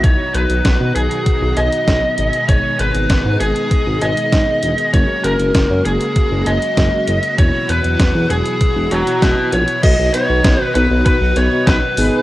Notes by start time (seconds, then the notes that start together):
0.04 B1 B2 D#3 F#3 D#4 F#4 C#5, kick, closed hi-hat
0.34 B1 B4, closed hi-hat
0.50 B1, closed hi-hat
0.65 B1, kick, snare, closed hi-hat
0.80 B2
0.96 B1 G#4, closed hi-hat
1.11 closed hi-hat
1.26 kick, closed hi-hat
1.42 B1
1.57 B1 D#5, closed hi-hat
1.72 closed hi-hat
1.88 B1, kick, snare, closed hi-hat
2.18 G#1 D#3 G#3 D#4 G#4, closed hi-hat
2.33 closed hi-hat
2.49 G#1 C#5, kick, closed hi-hat
2.79 G#1 B4, closed hi-hat
2.95 G#1, closed hi-hat
3.10 G#1, kick, snare, closed hi-hat
3.25 G#2
3.41 G#1 G#4, closed hi-hat
3.56 closed hi-hat
3.71 kick, closed hi-hat
3.87 G#1
4.02 G#1 D#5, closed hi-hat
4.17 closed hi-hat
4.32 G#1, kick, snare, closed hi-hat
4.63 E1, closed hi-hat
4.78 closed hi-hat
4.94 F#1 C#3 F#3 G#3 A#3 F#4 C#5, kick, closed hi-hat
5.24 F#1 A#4, closed hi-hat
5.39 F#1, closed hi-hat
5.55 F#1, kick, snare, closed hi-hat
5.70 F#2
5.85 F#1 G#4, closed hi-hat
6.01 closed hi-hat
6.16 kick, closed hi-hat
6.31 F#1
6.46 F#1 D#5, closed hi-hat
6.62 closed hi-hat
6.77 F#1, kick, snare, closed hi-hat
7.08 F#1, closed hi-hat
7.23 closed hi-hat
7.38 E1 B2 E3 E4 C#5, kick, closed hi-hat
7.69 E1 B4, closed hi-hat
7.84 E1, closed hi-hat
8.00 E1, kick, snare, closed hi-hat
8.15 E2
8.30 E1 G#4, closed hi-hat
8.46 closed hi-hat
8.61 kick, closed hi-hat
8.76 E1
8.91 E1 F#4 C#5, closed hi-hat
9.07 closed hi-hat
9.22 E1 B4, kick, snare, closed hi-hat
9.52 A#1 C#5, closed hi-hat
9.68 closed hi-hat
9.83 B1 B2 D#3 F#3 D#4 F#4 D#5, kick, closed hi-hat, crash
9.99 B1
10.14 B3 D#4 F#4 B4 C#5, closed hi-hat
10.29 B1 B3 D#4 F#4 B4
10.44 B1, kick, snare, closed hi-hat
10.62 B4
10.75 B1 B3 D#4 F#4 B4, closed hi-hat
10.91 B1 B3 D#4 F#4 B4
11.06 B4, kick, closed hi-hat
11.21 B1
11.36 B1 B3 D#4 F#4 B4 C#5, closed hi-hat
11.52 B3 D#4 F#4 B4
11.67 B1 B4, kick, snare, closed hi-hat
11.97 G#1 B2 D#3 G#3 B3 D#4 G#4 B4, open hi-hat